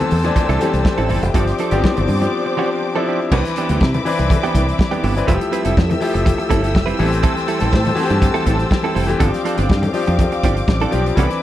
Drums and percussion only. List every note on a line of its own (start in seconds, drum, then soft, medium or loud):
0.00 closed hi-hat soft
0.00 high conga medium
0.00 low conga medium
0.11 open hi-hat medium
0.11 muted conga soft
0.11 low conga medium
0.24 closed hi-hat soft
0.24 high conga medium
0.36 kick loud
0.36 closed hi-hat medium
0.36 muted conga soft
0.36 low conga medium
0.50 closed hi-hat soft
0.61 closed hi-hat medium
0.61 muted conga soft
0.61 high conga medium
0.74 closed hi-hat soft
0.85 kick loud
0.85 snare loud
0.98 closed hi-hat soft
0.98 high conga medium
1.09 open hi-hat medium
1.23 closed hi-hat medium
1.34 kick loud
1.34 closed hi-hat medium
1.34 muted conga soft
1.47 snare soft
1.47 closed hi-hat medium
1.58 closed hi-hat medium
1.58 muted conga soft
1.71 closed hi-hat medium
1.71 high conga medium
1.84 kick loud
1.84 snare loud
1.84 muted conga soft
1.84 high conga medium
1.97 closed hi-hat medium
1.97 high conga medium
1.97 low conga medium
2.08 open hi-hat medium
2.08 muted conga soft
2.08 low conga medium
2.22 closed hi-hat soft
2.22 high conga medium
3.32 kick loud
3.32 crash medium
3.32 muted conga soft
3.45 snare soft
3.45 closed hi-hat medium
3.56 closed hi-hat medium
3.56 muted conga soft
3.69 closed hi-hat soft
3.69 high conga medium
3.81 kick loud
3.81 snare loud
3.81 muted conga soft
3.81 high conga medium
3.94 closed hi-hat medium
3.94 high conga medium
3.94 low conga medium
4.06 open hi-hat medium
4.19 closed hi-hat medium
4.19 high conga medium
4.30 kick loud
4.30 closed hi-hat medium
4.30 muted conga soft
4.30 low conga medium
4.44 closed hi-hat soft
4.55 kick medium
4.55 closed hi-hat medium
4.55 high conga medium
4.69 closed hi-hat soft
4.79 kick loud
4.79 snare loud
4.79 muted conga soft
4.91 closed hi-hat soft
4.91 high conga medium
5.04 open hi-hat medium
5.17 closed hi-hat medium
5.28 kick loud
5.28 closed hi-hat medium
5.41 closed hi-hat medium
5.53 closed hi-hat medium
5.53 muted conga soft
5.65 closed hi-hat medium
5.65 high conga medium
5.77 kick loud
5.77 snare loud
5.77 muted conga soft
5.77 high conga medium
5.90 closed hi-hat soft
5.90 high conga medium
5.90 low conga medium
6.01 open hi-hat medium
6.01 muted conga soft
6.16 closed hi-hat soft
6.16 high conga medium
6.26 kick loud
6.26 closed hi-hat medium
6.26 muted conga soft
6.26 low conga medium
6.40 closed hi-hat soft
6.51 kick medium
6.51 closed hi-hat medium
6.51 muted conga soft
6.51 high conga medium
6.64 closed hi-hat soft
6.75 kick loud
6.75 snare loud
6.75 muted conga soft
6.87 closed hi-hat soft
6.87 high conga medium
6.99 open hi-hat medium
6.99 muted conga soft
7.13 closed hi-hat medium
7.23 kick loud
7.23 closed hi-hat medium
7.37 snare soft
7.37 closed hi-hat soft
7.48 closed hi-hat medium
7.60 closed hi-hat medium
7.60 high conga medium
7.73 kick loud
7.73 snare loud
7.73 muted conga soft
7.73 high conga medium
7.85 closed hi-hat medium
7.85 high conga medium
7.85 low conga medium
7.97 open hi-hat medium
7.97 muted conga soft
8.10 closed hi-hat medium
8.10 high conga medium
8.22 kick loud
8.22 closed hi-hat medium
8.22 muted conga soft
8.22 low conga medium
8.35 closed hi-hat soft
8.46 kick medium
8.46 closed hi-hat medium
8.46 high conga medium
8.59 closed hi-hat soft
8.71 kick loud
8.71 snare loud
8.71 muted conga soft
8.83 closed hi-hat soft
8.83 high conga medium
8.96 open hi-hat medium
9.09 closed hi-hat medium
9.20 kick loud
9.20 closed hi-hat medium
9.20 muted conga soft
9.34 snare soft
9.34 closed hi-hat medium
9.46 closed hi-hat medium
9.57 closed hi-hat medium
9.57 high conga medium
9.69 kick loud
9.69 snare loud
9.69 high conga medium
9.83 closed hi-hat medium
9.83 high conga medium
9.83 low conga medium
9.94 open hi-hat medium
10.07 closed hi-hat soft
10.07 high conga medium
10.19 kick loud
10.19 closed hi-hat medium
10.19 muted conga soft
10.19 low conga loud
10.32 closed hi-hat soft
10.43 kick medium
10.43 closed hi-hat medium
10.43 high conga medium
10.57 closed hi-hat soft
10.68 kick loud
10.68 snare loud
10.68 muted conga soft
10.80 closed hi-hat soft
10.80 high conga medium
10.92 closed hi-hat medium
10.92 muted conga soft
11.06 closed hi-hat medium
11.17 kick loud
11.17 closed hi-hat medium
11.17 muted conga soft
11.31 snare soft
11.31 closed hi-hat medium